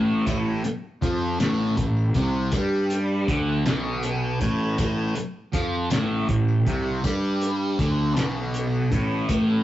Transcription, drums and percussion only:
0.27 kick, closed hi-hat, tambourine
0.64 closed hi-hat
1.02 kick, closed hi-hat
1.40 snare, closed hi-hat, tambourine
1.77 kick, closed hi-hat
1.97 tambourine
2.14 kick, closed hi-hat
2.52 kick, closed hi-hat, tambourine
2.90 closed hi-hat
3.28 kick, closed hi-hat
3.66 snare, closed hi-hat, tambourine
4.03 closed hi-hat
4.41 kick, closed hi-hat
4.78 kick, closed hi-hat, tambourine
5.15 closed hi-hat
5.53 kick, closed hi-hat
5.90 snare, closed hi-hat, tambourine
6.29 kick, closed hi-hat
6.48 tambourine
6.67 kick, closed hi-hat
7.04 kick, closed hi-hat, tambourine
7.42 closed hi-hat
7.79 kick, closed hi-hat
8.17 snare, closed hi-hat, tambourine
8.54 closed hi-hat
8.74 tambourine
8.92 kick, closed hi-hat
9.29 kick, closed hi-hat, tambourine

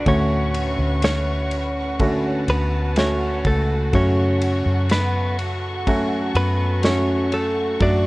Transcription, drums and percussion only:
0.06 kick, ride
0.55 ride
1.02 snare, ride
1.51 ride
2.00 kick, ride
2.48 ride
2.96 snare, ride
3.45 kick, ride
3.93 kick, ride
4.42 ride
4.89 snare, ride
5.39 ride
5.87 kick, ride
6.35 ride
6.83 snare, ride
7.32 ride
7.80 kick, ride

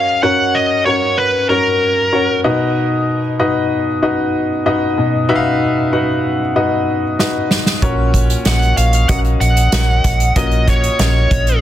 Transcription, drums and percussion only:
7.19 snare
7.51 snare
7.66 snare
7.82 kick, closed hi-hat
8.14 kick, closed hi-hat
8.30 closed hi-hat
8.45 snare, closed hi-hat
8.62 closed hi-hat
8.77 closed hi-hat
8.93 closed hi-hat
9.09 kick, closed hi-hat
9.25 closed hi-hat
9.41 closed hi-hat
9.57 closed hi-hat
9.72 snare, closed hi-hat
10.04 kick, snare, closed hi-hat
10.20 closed hi-hat
10.36 kick, closed hi-hat
10.51 closed hi-hat
10.68 kick, closed hi-hat
10.84 closed hi-hat
10.99 snare, closed hi-hat
11.31 kick, closed hi-hat
11.47 closed hi-hat

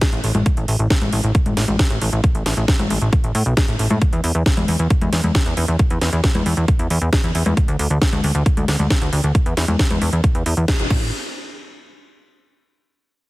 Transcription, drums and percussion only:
0.01 kick, snare, closed hi-hat
0.13 closed hi-hat
0.24 open hi-hat
0.35 closed hi-hat, high conga
0.46 kick, closed hi-hat
0.57 closed hi-hat
0.68 open hi-hat
0.79 closed hi-hat
0.90 kick, snare, closed hi-hat
1.01 closed hi-hat, high conga
1.13 open hi-hat
1.24 closed hi-hat
1.35 kick, closed hi-hat
1.46 closed hi-hat, high conga
1.57 snare, open hi-hat
1.68 closed hi-hat, high conga
1.79 kick, snare, closed hi-hat
1.90 closed hi-hat
2.01 open hi-hat
2.13 closed hi-hat
2.24 kick, closed hi-hat
2.35 closed hi-hat
2.46 snare, open hi-hat
2.57 closed hi-hat
2.68 kick, snare, closed hi-hat
2.79 closed hi-hat, high conga
2.90 open hi-hat
3.02 closed hi-hat
3.13 kick, closed hi-hat
3.24 closed hi-hat
3.35 open hi-hat
3.46 closed hi-hat
3.57 kick, snare, closed hi-hat
3.68 closed hi-hat
3.79 open hi-hat
3.90 high conga
4.02 kick, closed hi-hat
4.13 closed hi-hat
4.24 open hi-hat
4.35 closed hi-hat
4.46 kick, snare, closed hi-hat
4.57 closed hi-hat, high conga
4.68 open hi-hat
4.79 closed hi-hat
4.90 kick, closed hi-hat
5.01 closed hi-hat, high conga
5.13 snare, open hi-hat
5.24 closed hi-hat, high conga
5.35 kick, snare, closed hi-hat
5.46 closed hi-hat
5.57 open hi-hat
5.68 closed hi-hat
5.79 kick, closed hi-hat
5.90 closed hi-hat
6.01 snare, open hi-hat
6.13 closed hi-hat
6.24 kick, snare, closed hi-hat
6.35 closed hi-hat, high conga
6.46 open hi-hat
6.57 closed hi-hat
6.68 kick, closed hi-hat
6.79 closed hi-hat
6.90 open hi-hat
7.13 kick, snare, closed hi-hat
7.24 closed hi-hat
7.35 open hi-hat
7.46 closed hi-hat, high conga
7.57 kick, closed hi-hat
7.68 closed hi-hat
7.79 open hi-hat
7.90 closed hi-hat
8.02 kick, snare, closed hi-hat
8.13 closed hi-hat, high conga
8.24 open hi-hat
8.35 closed hi-hat
8.46 kick, closed hi-hat
8.57 closed hi-hat, high conga
8.68 snare, open hi-hat
8.79 closed hi-hat, high conga
8.90 kick, snare, closed hi-hat
9.02 closed hi-hat
9.13 open hi-hat
9.24 closed hi-hat
9.35 kick, closed hi-hat
9.46 closed hi-hat
9.57 snare, open hi-hat
9.68 closed hi-hat, high conga
9.79 kick, snare, closed hi-hat
9.90 closed hi-hat, high conga
10.02 open hi-hat
10.13 closed hi-hat
10.24 kick, closed hi-hat
10.35 closed hi-hat
10.46 open hi-hat
10.57 closed hi-hat
10.68 kick, snare, closed hi-hat
10.79 closed hi-hat
10.90 kick, crash

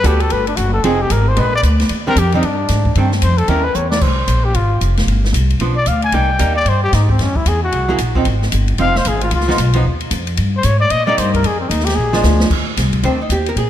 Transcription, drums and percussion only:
0.04 hi-hat pedal, ride
0.20 ride
0.30 ride
0.47 ride
0.57 hi-hat pedal, ride
0.84 ride
1.10 hi-hat pedal, ride
1.37 ride
1.63 hi-hat pedal, ride
1.80 snare, ride
1.89 ride
2.16 hi-hat pedal, ride
2.32 ride
2.43 ride
2.68 snare, hi-hat pedal, ride
2.85 kick
2.95 ride
3.12 snare
3.22 hi-hat pedal, ride
3.38 ride
3.48 ride
3.75 hi-hat pedal
3.92 snare
4.01 kick, crash
4.28 hi-hat pedal, ride
4.54 ride
4.81 hi-hat pedal, ride
4.97 snare, ride
5.08 ride
5.25 snare
5.34 hi-hat pedal, ride
5.50 ride
5.60 ride
5.86 hi-hat pedal, ride
6.02 ride
6.12 ride
6.39 hi-hat pedal, ride
6.66 ride
6.93 snare, hi-hat pedal, ride
7.09 kick
7.19 snare, ride
7.36 kick
7.46 hi-hat pedal, ride
7.72 ride
7.98 hi-hat pedal, ride
8.15 kick
8.25 ride
8.42 snare
8.52 hi-hat pedal, ride
8.68 ride
8.78 ride
8.95 snare
9.05 hi-hat pedal, ride
9.21 ride
9.31 ride
9.40 snare
9.50 snare
9.58 hi-hat pedal, ride
9.73 ride
10.00 ride
10.11 hi-hat pedal, ride
10.27 ride
10.37 ride
10.63 hi-hat pedal, ride
10.90 ride
11.18 hi-hat pedal, ride
11.34 kick, ride
11.44 ride
11.71 hi-hat pedal, ride
11.80 snare
11.87 snare, ride
12.13 snare
12.23 snare, hi-hat pedal
12.40 snare
12.50 kick, crash
12.77 snare, hi-hat pedal, ride
12.93 kick, ride
13.03 ride
13.30 hi-hat pedal, ride
13.46 ride
13.57 ride

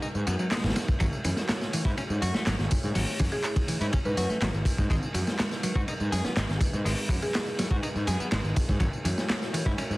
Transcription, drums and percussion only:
0.02 tambourine
0.15 tambourine
0.27 ride, tambourine
0.39 tambourine
0.51 snare, clap, ride, tambourine
0.57 snare, ride
0.64 snare, ride, tambourine
0.70 snare, ride
0.76 snare, ride, tambourine
0.88 kick, tambourine
1.00 kick, ride, tambourine
1.13 tambourine
1.24 open hi-hat, ride, tambourine
1.37 snare, tambourine
1.49 snare, clap, ride, tambourine
1.61 snare, tambourine
1.73 open hi-hat, ride, tambourine
1.85 kick, tambourine
1.97 ride, tambourine
2.10 tambourine
2.22 open hi-hat, ride, tambourine
2.34 snare, tambourine
2.46 snare, clap, ride, tambourine
2.59 snare, tambourine
2.71 kick, open hi-hat, ride, tambourine
2.83 tambourine
2.95 open hi-hat, tambourine
3.08 tambourine
3.19 kick, open hi-hat, ride, tambourine
3.32 tambourine
3.44 clap, ride, tambourine
3.56 kick, ride, tambourine
3.68 open hi-hat, tambourine
3.81 ride, tambourine
3.93 kick, ride, tambourine
4.05 tambourine
4.17 open hi-hat, ride, tambourine
4.30 tambourine
4.41 snare, clap, ride, tambourine
4.54 tambourine
4.65 kick, open hi-hat, ride, tambourine
4.78 kick, tambourine
4.90 kick, ride, tambourine
5.03 tambourine
5.14 open hi-hat, ride, tambourine
5.27 snare, tambourine
5.39 snare, clap, ride, tambourine
5.51 snare, tambourine
5.63 open hi-hat, ride, tambourine
5.75 kick, tambourine
5.88 ride, tambourine
6.00 tambourine
6.12 open hi-hat, ride, tambourine
6.25 snare, tambourine
6.37 snare, clap, ride, tambourine
6.49 snare, tambourine
6.61 kick, open hi-hat, ride, tambourine
6.74 tambourine
6.86 open hi-hat, tambourine
6.98 tambourine
7.09 kick, open hi-hat, ride, tambourine
7.22 ride, tambourine
7.35 snare, clap, ride, tambourine
7.47 tambourine
7.59 snare, open hi-hat, ride, tambourine
7.71 kick, tambourine
7.83 ride, tambourine
7.96 tambourine
8.07 open hi-hat, ride, tambourine
8.20 tambourine
8.31 snare, clap, ride, tambourine
8.45 tambourine
8.56 kick, open hi-hat, ride, tambourine
8.69 kick, tambourine
8.80 kick, ride, tambourine
8.93 tambourine
9.05 open hi-hat, ride, tambourine
9.18 snare, tambourine
9.29 snare, clap, ride, tambourine
9.42 snare, tambourine
9.54 open hi-hat, ride, tambourine
9.66 kick, tambourine
9.78 ride, tambourine
9.91 tambourine

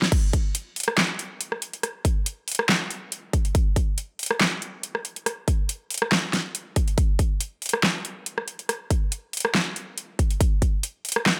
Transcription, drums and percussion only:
0.02 snare
0.12 kick, closed hi-hat, crash
0.33 kick, closed hi-hat
0.55 closed hi-hat
0.76 closed hi-hat, open hi-hat
0.83 closed hi-hat
0.88 cross-stick
0.98 snare, clap
1.19 closed hi-hat
1.41 closed hi-hat
1.52 cross-stick
1.62 closed hi-hat
1.73 closed hi-hat
1.83 cross-stick, closed hi-hat
2.05 kick, closed hi-hat
2.26 closed hi-hat
2.48 closed hi-hat, open hi-hat
2.55 closed hi-hat
2.59 cross-stick
2.69 snare, clap
2.91 closed hi-hat
3.12 closed hi-hat
3.33 kick, closed hi-hat
3.45 closed hi-hat
3.55 kick, closed hi-hat
3.76 kick, closed hi-hat
3.98 closed hi-hat
4.19 closed hi-hat, open hi-hat
4.26 closed hi-hat
4.31 cross-stick
4.41 snare, clap
4.62 closed hi-hat
4.83 closed hi-hat
4.95 cross-stick
5.05 closed hi-hat
5.16 closed hi-hat
5.26 cross-stick, closed hi-hat
5.48 kick, closed hi-hat
5.69 closed hi-hat
5.90 closed hi-hat, open hi-hat
5.98 closed hi-hat
6.02 cross-stick
6.12 snare, clap
6.33 snare, closed hi-hat
6.55 closed hi-hat
6.76 kick, closed hi-hat
6.88 closed hi-hat
6.98 kick, closed hi-hat
7.19 kick, closed hi-hat
7.41 closed hi-hat
7.62 closed hi-hat, open hi-hat
7.69 closed hi-hat
7.73 cross-stick
7.83 snare, clap
8.05 closed hi-hat
8.26 closed hi-hat
8.38 cross-stick
8.48 closed hi-hat
8.59 closed hi-hat
8.69 cross-stick, closed hi-hat
8.90 kick, closed hi-hat
9.12 closed hi-hat
9.33 closed hi-hat, open hi-hat
9.40 closed hi-hat
9.45 cross-stick
9.55 snare, clap
9.76 closed hi-hat
9.98 closed hi-hat
10.19 kick, closed hi-hat
10.31 closed hi-hat
10.41 kick, closed hi-hat
10.62 kick, closed hi-hat
10.83 closed hi-hat
11.05 closed hi-hat, open hi-hat
11.12 closed hi-hat
11.16 cross-stick
11.26 snare, clap

